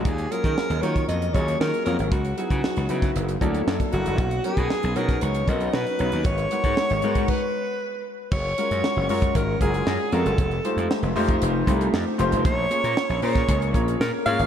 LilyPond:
<<
  \new Staff \with { instrumentName = "Alto saxophone" } { \time 4/4 \key fis \major \tempo 4 = 116 gis'8 ais'4 cis''8 dis''8 cis''8 ais'8 ais'8 | fis'8 fis'2 r4 fis'8~ | fis'8 gis'4 ais'8 cis''8 dis''8 b'4 | cis''2 b'4. r8 |
cis''4. cis''8 ais'8 gis'4 a'8~ | a'4 r2. | cis''4. cis''4 r8 ais'8 eis''8 | }
  \new Staff \with { instrumentName = "Grand piano" } { \time 4/4 \key fis \major r8 <fis ais cis' eis' gis'>4 <fis ais cis' eis' ais'>4 <fis ais cis' eis' gis'>4 <fis ais cis' eis' ais'>8 | r8 <fis b dis' e' gis'>4 <fis b dis' e' b'>8 r8 <fis ais d' e' a'>4 <fis ais d' e' a'>8 | r8 <fis b cis' dis' ais'>4 <fis b cis' dis' ais'>4 <fis b cis' dis' ais'>4 <fis b cis' dis' b'>8 | r8 <gis b dis' fis' ais'>4 <gis b dis' fis' ais'>8 r2 |
r8 <gis cis' eis' fis' ais'>4 <gis cis' eis' fis' ais'>4 <gis cis' eis' fis' ais'>4 <gis cis' eis' fis' ais'>8 | r8 <gis a ees' f' g' c''>4 <a ees' f' g' c''>4 <a ees' f' g' c''>4 <a ees' f' g' c''>8 | r8 <ais cis' eis' gis' cis''>4 <ais cis' eis' gis' ais'>4 <ais cis' eis' gis' cis''>4 <ais cis' eis' gis' cis''>8 | }
  \new Staff \with { instrumentName = "Slap bass" } { \clef bass \time 4/4 \key fis \major dis,8 r16 dis16 r16 dis,16 dis8 eis,8 dis,8 dis16 r16 eis,16 gis,,16 | cis,8 r16 cis16 r16 cis,16 cis8 fis,,8 d,8 fis,16 r16 fis,,16 fis,,16 | b,,8 r16 b,16 r16 b,,16 b,8 cis,8 b,,8 b,16 r16 b,,16 dis,16 | gis,,8 r16 gis,16 r16 gis,,16 gis,8 r2 |
fis,,8 r16 fis,16 r16 fis,,16 fis,8 gis,,8 fis,,8 fis,16 r16 eis,16 fis,,16 | f,,8 r16 f,16 r16 f,,16 f,8 f,,8 c,8 f,16 r16 f,,16 f,,16 | ais,,8 r16 ais,16 r16 ais,,16 ais,8 cis,8 ais,,8 ais,16 r16 gis,16 gis,,16 | }
  \new DrumStaff \with { instrumentName = "Drums" } \drummode { \time 4/4 <hh bd>16 hh16 hh16 <hh bd>16 sn16 hh16 hh16 <hh bd>16 hh16 hh16 <hh bd>16 hh16 sn16 hh16 hh16 hh16 | <hh bd>16 hh16 hh16 <hh bd>16 sn16 hh16 hh16 <hh bd sn>16 hh16 hh16 <hh bd>16 hh16 sn16 <hh bd>16 hh16 hh16 | <hh bd>16 hh16 hh16 <hh bd>16 sn16 hh16 hh16 <hh bd sn>16 hh16 hh16 <hh bd>16 hh16 sn16 hh16 hh16 hh16 | <hh bd>16 hh16 hh16 <hh bd>16 sn16 hh16 hh16 <hh bd>16 <cymc bd>4 r4 |
<cymc bd>8 hh16 hh16 sn8 hho16 <hh bd>16 <hh bd>8 <hh bd>16 hh16 sn8 hh16 hh16 | <hh bd>16 hh16 hh16 hh16 sn16 hh16 hho16 <hh bd>16 hh8 <hh bd>16 hh16 sn8 hh16 hh16 | <hh bd>8 hh16 hh16 sn16 hh16 hho16 <hh bd sn>16 <hh bd>16 hh16 <hh bd>16 hh16 sn8 hh16 hh16 | }
>>